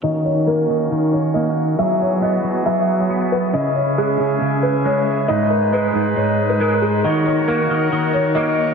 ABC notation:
X:1
M:4/4
L:1/16
Q:1/4=137
K:Ebphr
V:1 name="Felt piano"
e2 d2 B4 z2 d2 e4 | =e2 d2 _e4 =e3 d3 =B2 | e2 d2 A4 z2 c2 d4 | e2 B2 c4 d3 c B2 A2 |
e2 d2 B4 z2 d2 e4 |]
V:2 name="Accordion"
[E,B,DG]16 | [=E,=B,^G]16 | [D,DFA]16 | [A,,A,Ec]16 |
[E,B,Gd]16 |]
V:3 name="Clean electric guitar" clef=bass
E,4 B,2 E,2 E,4 B,4 | ^F,4 =B,2 F,2 F,4 B,4 | D,4 A,2 D,2 D,4 A,4 | A,,4 A,2 A,,2 A,,4 A,4 |
E,4 B,2 E,2 E,4 B,4 |]